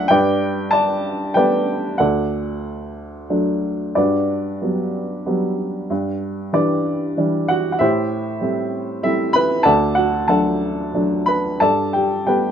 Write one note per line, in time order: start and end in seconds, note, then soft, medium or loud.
0.00 0.11 D2 medium
0.00 0.11 F#3 medium
0.00 0.11 A3 soft
0.00 0.11 D4 medium
0.00 0.11 A4 medium
0.00 0.11 D5 medium
0.00 0.11 E5 medium
0.00 0.11 F#5 medium
0.00 0.11 B5 medium
0.08 1.96 G2 medium
0.08 1.00 B4 medium
0.08 0.71 D5 medium
0.08 0.73 G5 medium
0.71 1.35 D5 medium
0.71 1.37 A5 medium
1.34 1.97 G3 soft
1.34 1.98 A3 soft
1.34 1.98 B3 medium
1.34 1.96 B4 medium
1.34 1.96 D5 medium
1.34 2.01 G5 medium
1.98 3.93 D2 medium
1.98 3.26 A4 medium
1.98 3.26 D5 soft
1.98 3.25 F#5 medium
3.30 3.94 F#3 soft
3.30 3.95 A3 soft
3.30 3.95 D4 soft
3.95 5.86 G2 medium
3.95 6.51 D4 soft
3.95 6.51 F#4 soft
3.95 6.51 B4 soft
3.95 6.52 D5 medium
4.61 5.24 F#3 soft
4.61 5.25 G3 soft
4.61 5.25 B3 soft
5.26 5.88 F#3 soft
5.26 5.88 G3 soft
5.26 5.88 B3 soft
5.90 7.76 G2 medium
6.53 7.15 E3 soft
6.53 7.16 G3 soft
6.53 7.16 D4 soft
6.53 7.46 B4 soft
6.53 7.52 D5 medium
7.17 7.78 E3 soft
7.17 7.79 G3 soft
7.17 7.79 D4 medium
7.48 7.73 F#4 medium
7.48 7.71 F#5 medium
7.72 7.80 F#5 medium
7.79 9.62 A2 medium
7.79 9.00 E4 medium
7.79 9.00 G4 medium
7.79 9.00 C5 medium
7.79 8.99 E5 medium
8.41 9.01 G3 soft
8.41 9.02 A3 soft
8.41 9.02 C4 soft
9.03 9.64 G3 soft
9.03 9.64 A3 soft
9.03 9.64 C4 medium
9.03 9.33 E4 medium
9.03 9.36 E5 medium
9.33 9.64 B4 medium
9.33 9.66 B5 loud
9.63 11.56 D2 medium
9.63 9.95 A4 medium
9.63 9.95 D5 medium
9.63 9.93 F#5 medium
9.63 9.97 A5 medium
9.95 10.27 F#4 medium
9.95 10.28 F#5 medium
10.28 10.92 F#3 soft
10.28 10.92 A3 soft
10.28 10.92 D4 soft
10.28 11.24 A4 medium
10.28 11.24 F#5 medium
10.28 11.30 A5 medium
10.94 11.59 F#3 soft
10.94 11.59 A3 soft
10.94 11.59 D4 soft
11.26 11.59 B4 medium
11.26 11.61 B5 medium
11.60 12.52 G2 medium
11.60 11.92 A4 medium
11.60 11.92 D5 medium
11.60 11.94 A5 medium
11.93 12.25 G4 medium
11.93 12.25 G5 medium
12.27 12.52 G3 soft
12.27 12.52 A3 soft
12.27 12.52 B3 soft
12.27 12.52 G4 medium
12.27 12.52 B4 medium
12.27 12.52 G5 medium